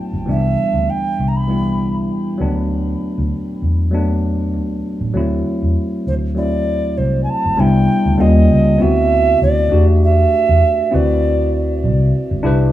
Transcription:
0.00 0.29 F#3 medium
0.00 0.29 A3 medium
0.00 0.28 B3 medium
0.00 0.29 E4 medium
0.13 0.25 G1 medium
0.26 0.53 C2 medium
0.26 1.17 E3 medium
0.26 1.18 G3 medium
0.26 1.18 B3 medium
0.26 1.19 D4 medium
0.31 0.92 E5 medium
0.74 0.86 D2 medium
0.90 1.30 G5 medium
1.19 2.06 C2 medium
1.28 1.38 A#5 medium
1.36 1.97 B5 medium
1.47 2.39 E3 medium
1.47 2.39 G3 medium
1.47 2.39 B3 medium
1.47 2.41 E4 medium
2.38 2.93 D2 medium
2.38 3.37 F#3 medium
2.38 3.38 A3 medium
2.38 3.38 B3 medium
2.38 3.39 D4 medium
3.18 3.30 D2 medium
3.62 4.53 E2 medium
3.91 4.83 F#3 medium
3.91 4.83 A3 medium
3.91 4.84 B3 medium
3.91 4.84 D4 medium
4.53 4.80 D2 medium
5.01 5.13 A1 medium
5.13 5.41 D2 medium
5.13 6.05 F#3 medium
5.13 6.05 A3 medium
5.13 6.06 C4 medium
5.13 6.07 E4 medium
5.62 5.74 E2 medium
6.07 7.00 D2 medium
6.07 6.14 C5 medium
6.34 7.26 F#3 medium
6.34 7.27 A3 medium
6.34 7.27 C4 medium
6.34 7.28 E4 medium
6.34 6.99 D5 loud
6.98 7.24 C2 medium
6.98 7.22 C5 medium
7.24 7.31 G#5 medium
7.30 7.61 A5 medium
7.45 7.57 G1 medium
7.57 7.85 C2 loud
7.57 8.16 G3 medium
7.57 8.19 B3 medium
7.57 8.20 D4 medium
7.57 8.20 E4 medium
7.57 8.22 G5 loud
8.06 8.18 D2 medium
8.17 8.45 D#2 medium
8.17 8.68 G3 medium
8.17 8.68 A#3 medium
8.17 8.69 C#4 medium
8.17 8.70 F4 medium
8.17 8.83 D#5 medium
8.50 8.76 C#2 medium
8.78 9.33 D2 loud
8.78 9.70 B3 medium
8.78 9.70 C4 medium
8.78 9.71 E4 medium
8.78 9.71 F#4 medium
8.78 9.42 E5 medium
9.42 9.68 D2 medium
9.42 9.86 D5 loud
9.70 10.24 E2 medium
9.70 10.68 A3 medium
9.70 10.69 D4 medium
9.70 10.70 F#4 medium
9.70 10.70 G4 medium
10.04 10.97 E5 loud
10.49 10.61 E2 medium
10.91 11.85 D2 medium
10.91 11.90 C4 medium
10.91 11.90 E4 medium
10.91 11.91 F#4 medium
10.91 11.92 B4 medium
10.95 11.85 D5 medium
11.84 12.10 C2 medium
12.31 12.43 G1 medium
12.43 12.71 C2 loud
12.43 12.72 D4 loud
12.43 12.72 E4 medium
12.43 12.72 G4 medium
12.43 12.72 B4 loud

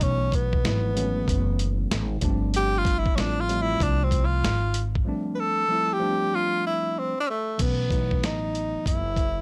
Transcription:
0.00 0.61 B1 loud
0.00 0.57 E3 medium
0.00 0.58 F#3 medium
0.00 0.58 A3 medium
0.00 0.58 B3 medium
0.00 0.37 C#4 loud
0.00 0.59 D#4 medium
0.00 kick loud
0.00 closed hi-hat medium
0.32 1.92 B3 medium
0.32 kick medium
0.32 closed hi-hat medium
0.53 kick medium
0.63 1.25 G#1 loud
0.63 0.92 E3 medium
0.63 0.92 F#3 medium
0.63 0.93 A3 medium
0.63 0.93 B3 medium
0.63 0.94 E4 medium
0.63 snare loud
0.63 closed hi-hat medium
0.95 2.07 E3 medium
0.95 2.07 F#3 medium
0.95 2.08 A3 medium
0.95 2.08 B3 medium
0.95 2.08 C#4 medium
0.95 closed hi-hat medium
1.28 1.88 F#1 loud
1.28 kick medium
1.28 closed hi-hat medium
1.59 closed hi-hat medium
1.91 2.21 G#1 medium
1.91 snare loud
1.91 closed hi-hat loud
2.21 3.13 G1 medium
2.21 3.06 F3 medium
2.21 3.07 G3 medium
2.21 3.07 A3 medium
2.21 2.31 B3 medium
2.21 3.08 D4 medium
2.21 kick loud
2.21 closed hi-hat medium
2.30 3.11 C4 medium
2.54 2.79 G4 loud
2.54 closed hi-hat medium
2.78 3.00 F4 loud
2.85 kick medium
2.85 closed hi-hat medium
2.99 3.17 E4 medium
3.06 kick medium
3.16 3.77 A1 medium
3.16 3.45 F3 medium
3.16 3.45 G3 medium
3.16 3.46 A3 medium
3.16 3.46 C4 medium
3.16 3.21 C#4 medium
3.16 3.42 D4 medium
3.16 3.46 F4 medium
3.16 snare loud
3.16 closed hi-hat medium
3.41 3.63 F4 medium
3.48 4.60 F3 medium
3.48 4.60 G3 medium
3.48 4.60 A3 medium
3.48 4.61 C4 medium
3.48 4.61 F4 medium
3.48 closed hi-hat medium
3.61 3.84 E4 loud
3.80 4.40 C2 loud
3.80 4.05 D4 medium
3.80 kick medium
3.80 closed hi-hat medium
4.04 4.27 C4 medium
4.11 kick medium
4.11 closed hi-hat medium
4.25 4.87 F4 medium
4.44 5.04 G#1 loud
4.44 snare loud
4.44 closed hi-hat loud
4.74 closed hi-hat medium
4.95 kick medium
5.05 5.62 F3 medium
5.05 5.63 G3 medium
5.05 5.63 A3 medium
5.05 5.64 C4 medium
5.05 5.64 D4 medium
5.35 5.42 B4 medium
5.40 5.94 A4 loud
5.68 5.97 F3 medium
5.68 5.98 G3 medium
5.68 5.98 A3 medium
5.68 5.99 C4 medium
5.68 5.99 E4 medium
5.93 6.36 G4 loud
5.99 7.12 F3 medium
5.99 7.12 G3 medium
5.99 7.13 A3 medium
5.99 6.10 B3 medium
5.99 7.14 D4 medium
6.08 7.16 C4 medium
6.35 6.65 F4 loud
6.67 7.00 E4 medium
6.99 7.19 C4 loud
7.20 7.29 D4 medium
7.30 7.63 A3 medium
7.58 8.22 B1 loud
7.58 7.87 E3 medium
7.58 7.87 F#3 medium
7.58 7.88 A3 medium
7.58 7.88 B3 medium
7.58 8.26 B3 medium
7.58 7.88 C#4 medium
7.58 kick loud
7.58 closed hi-hat medium
7.58 crash medium
7.90 9.02 E3 medium
7.90 9.02 F#3 medium
7.90 9.03 A3 medium
7.90 9.03 B3 medium
7.90 9.03 D#4 medium
7.90 kick medium
7.90 closed hi-hat medium
8.11 kick medium
8.22 8.72 A1 medium
8.22 8.87 D#4 medium
8.22 snare loud
8.22 closed hi-hat medium
8.55 closed hi-hat medium
8.74 muted upright bass stroke soft
8.86 9.41 F#1 loud
8.86 9.41 E4 loud
8.86 kick medium
8.86 closed hi-hat medium
9.17 kick medium
9.17 closed hi-hat medium

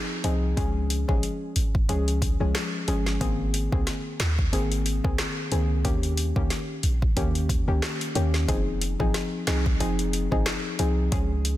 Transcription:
0.00 0.21 F3 medium
0.00 0.21 C4 medium
0.00 0.21 D#4 medium
0.00 0.21 G#4 medium
0.24 0.54 C2 medium
0.24 0.55 F3 medium
0.24 0.55 C4 medium
0.24 0.55 D#4 medium
0.24 0.55 G#4 medium
0.24 closed hi-hat medium
0.57 1.05 C#2 loud
0.57 1.04 F3 medium
0.57 1.04 G#3 medium
0.57 1.04 C#4 medium
0.57 1.04 G#4 loud
0.57 kick loud
0.57 closed hi-hat medium
0.90 closed hi-hat medium
1.08 1.22 A#1 medium
1.08 1.23 F3 medium
1.08 1.23 G#3 medium
1.08 1.23 C#4 medium
1.08 1.23 G#4 medium
1.08 kick medium
1.23 closed hi-hat medium
1.56 1.86 G#1 medium
1.56 closed hi-hat medium
1.75 kick medium
1.89 2.36 C#2 loud
1.89 2.36 F3 medium
1.89 2.36 G#3 medium
1.89 2.36 C#4 medium
1.89 2.36 G#4 loud
1.89 closed hi-hat medium
2.08 closed hi-hat soft
2.22 kick medium
2.22 closed hi-hat medium
2.40 2.54 C2 medium
2.40 2.84 F3 medium
2.40 2.84 G#3 medium
2.40 2.85 C#4 medium
2.40 2.85 G#4 medium
2.55 cross-stick medium
2.55 snare loud
2.55 clap medium
2.55 closed hi-hat medium
2.88 3.18 G1 medium
2.88 3.18 F3 medium
2.88 3.19 G#3 medium
2.88 3.19 C#4 medium
2.88 3.19 G#4 medium
2.88 closed hi-hat medium
3.06 snare medium
3.21 3.68 G#1 loud
3.21 3.68 D#3 medium
3.21 3.68 A#3 medium
3.21 3.68 C4 medium
3.21 3.68 G#4 loud
3.21 kick loud
3.21 closed hi-hat medium
3.54 closed hi-hat medium
3.72 3.86 C2 medium
3.72 3.87 D#3 medium
3.72 3.87 A#3 medium
3.72 3.87 C4 medium
3.72 3.87 G#4 medium
3.72 kick medium
3.87 snare medium
3.87 closed hi-hat medium
4.20 4.50 D#2 medium
4.20 snare loud
4.20 clap loud
4.20 closed hi-hat medium
4.39 kick medium
4.53 5.00 G#1 loud
4.53 5.00 D#3 medium
4.53 5.00 A#3 medium
4.53 5.00 C4 medium
4.53 5.00 G#4 loud
4.53 closed hi-hat medium
4.72 closed hi-hat medium
4.86 closed hi-hat medium
5.04 5.17 C2 medium
5.04 5.48 D#3 medium
5.04 5.48 A#3 medium
5.04 5.48 C4 medium
5.04 5.48 G#4 medium
5.04 kick medium
5.19 cross-stick medium
5.19 snare loud
5.19 clap medium
5.19 closed hi-hat medium
5.51 5.86 C#2 medium
5.51 5.82 D#3 medium
5.51 5.82 A#3 medium
5.51 5.82 C4 medium
5.51 5.83 G#4 medium
5.51 closed hi-hat medium
5.84 6.32 D#2 loud
5.84 6.32 D#3 medium
5.84 6.32 A#3 medium
5.84 6.32 C#4 medium
5.84 6.32 G4 loud
5.84 kick loud
5.84 closed hi-hat medium
6.03 closed hi-hat medium
6.17 closed hi-hat medium
6.36 6.49 C#2 medium
6.36 6.50 D#3 medium
6.36 6.51 A#3 medium
6.36 6.51 C#4 medium
6.36 6.51 G4 medium
6.36 kick medium
6.50 snare medium
6.50 closed hi-hat medium
6.83 7.18 A#1 medium
6.83 closed hi-hat medium
7.02 kick medium
7.16 7.64 D#2 loud
7.16 7.63 D#3 medium
7.16 7.64 A#3 medium
7.16 7.64 C#4 medium
7.16 7.64 G4 loud
7.16 kick medium
7.16 closed hi-hat medium
7.35 closed hi-hat soft
7.49 kick medium
7.49 closed hi-hat medium
7.68 7.81 C#2 medium
7.68 8.12 D#3 medium
7.68 8.12 A#3 medium
7.68 8.12 C#4 medium
7.68 8.12 G4 medium
7.82 cross-stick medium
7.82 snare loud
7.82 clap medium
7.82 closed hi-hat medium
8.01 closed hi-hat medium
8.15 8.45 D#2 medium
8.15 8.46 D#3 medium
8.15 8.46 A#3 medium
8.15 8.46 C#4 medium
8.15 8.46 G4 medium
8.15 closed hi-hat medium
8.34 snare medium
8.48 8.96 F1 loud
8.48 8.67 F3 medium
8.48 8.67 C4 medium
8.48 8.67 D#4 medium
8.48 8.67 G#4 loud
8.48 kick loud
8.48 closed hi-hat medium
8.82 closed hi-hat medium
9.00 9.13 G#1 medium
9.00 9.44 F3 medium
9.00 9.44 C4 medium
9.00 9.44 D#4 medium
9.00 9.44 G#4 medium
9.00 kick medium
9.14 snare medium
9.14 closed hi-hat medium
9.47 9.77 C2 loud
9.47 9.78 F3 medium
9.47 9.78 C4 medium
9.47 9.78 D#4 medium
9.47 9.78 G#4 medium
9.47 snare loud
9.47 clap loud
9.47 closed hi-hat medium
9.66 kick medium
9.80 10.28 F1 loud
9.80 10.27 F3 medium
9.80 10.27 C4 medium
9.80 10.27 D#4 medium
9.80 10.27 G#4 loud
9.80 closed hi-hat medium
9.99 closed hi-hat medium
10.13 closed hi-hat medium
10.31 10.45 G#1 medium
10.31 10.76 F3 medium
10.31 10.76 C4 medium
10.31 10.76 D#4 medium
10.31 10.76 G#4 medium
10.31 kick medium
10.46 cross-stick medium
10.46 snare loud
10.46 clap medium
10.46 closed hi-hat medium
10.79 11.09 C2 medium
10.79 11.10 F3 medium
10.79 11.10 C4 medium
10.79 11.10 D#4 medium
10.79 11.10 G#4 medium
10.79 closed hi-hat medium
11.12 11.57 C#2 loud
11.12 11.30 F3 medium
11.12 11.30 G#3 medium
11.12 11.31 C#4 medium
11.12 11.31 G#4 loud
11.12 kick loud
11.12 closed hi-hat medium
11.45 closed hi-hat medium

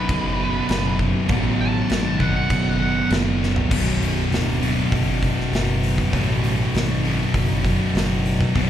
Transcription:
0.00 0.41 B1 loud
0.00 1.27 B1 medium
0.00 0.38 F#2 loud
0.00 1.27 F#2 medium
0.00 0.38 B2 loud
0.00 1.30 B2 medium
0.00 0.96 B4 loud
0.09 0.60 F#1 loud
0.09 kick loud
0.09 crash medium
0.38 0.67 B1 medium
0.38 0.68 F#2 loud
0.38 0.71 B2 loud
0.68 1.20 F#1 loud
0.68 1.28 B1 medium
0.68 1.28 F#2 medium
0.68 1.31 B2 medium
0.68 snare loud
0.68 crash medium
0.99 kick medium
1.28 1.80 A1 loud
1.28 2.78 B1 loud
1.28 2.79 F#2 loud
1.28 2.78 B2 loud
1.28 kick loud
1.28 crash medium
1.61 2.19 A5 loud
1.90 2.41 G#1 loud
1.90 snare loud
1.90 crash medium
2.19 3.68 B1 medium
2.19 3.70 F#2 medium
2.19 3.69 B2 loud
2.19 2.35 F#5 medium
2.19 kick medium
2.36 2.79 F#5 medium
2.50 3.01 F#1 medium
2.50 kick loud
2.50 crash medium
2.79 3.09 B1 medium
2.79 3.09 F#2 loud
2.79 3.08 B2 loud
2.79 3.10 F#5 loud
3.10 3.61 F#1 loud
3.10 3.69 B1 medium
3.10 3.70 F#2 medium
3.10 3.71 B2 loud
3.10 snare loud
3.10 crash medium
3.43 snare medium
3.56 floor tom loud
3.71 3.97 B0 loud
3.71 5.24 B1 loud
3.71 5.21 F#2 loud
3.71 5.21 B2 loud
3.71 kick loud
3.71 crash loud
4.00 4.26 B0 medium
4.00 open hi-hat medium
4.31 4.82 D1 loud
4.31 snare loud
4.31 open hi-hat medium
4.61 6.10 B1 medium
4.61 6.12 F#2 medium
4.61 6.13 B2 loud
4.61 open hi-hat medium
4.92 5.43 F#1 loud
4.92 kick loud
4.92 open hi-hat medium
5.22 5.51 B1 medium
5.22 5.51 F#2 medium
5.22 5.54 B2 medium
5.22 kick medium
5.22 open hi-hat medium
5.40 snare soft
5.51 6.03 F#1 loud
5.51 6.13 B1 medium
5.51 6.12 F#2 medium
5.51 6.15 B2 medium
5.51 snare loud
5.51 open hi-hat medium
5.83 open hi-hat medium
5.98 kick medium
6.13 6.64 A1 loud
6.13 7.66 B1 medium
6.13 7.63 F#2 loud
6.13 7.63 B2 loud
6.13 kick loud
6.13 open hi-hat medium
6.44 open hi-hat medium
6.74 7.24 G#1 loud
6.74 snare loud
6.74 open hi-hat medium
7.03 8.54 B1 medium
7.03 8.54 F#2 medium
7.03 8.57 B2 loud
7.03 open hi-hat medium
7.34 7.85 F#1 medium
7.34 kick loud
7.34 open hi-hat medium
7.63 7.93 B1 medium
7.63 7.93 F#2 medium
7.63 7.96 B2 loud
7.63 kick medium
7.63 open hi-hat medium
7.93 8.45 F#1 loud
7.93 8.54 B1 medium
7.93 8.54 F#2 loud
7.93 8.56 B2 medium
7.93 snare loud
7.93 open hi-hat medium
8.25 open hi-hat medium
8.41 kick medium
8.54 8.70 B0 loud
8.54 8.70 B1 loud
8.54 8.70 F#2 loud
8.54 8.70 B2 loud
8.54 kick loud
8.54 open hi-hat medium

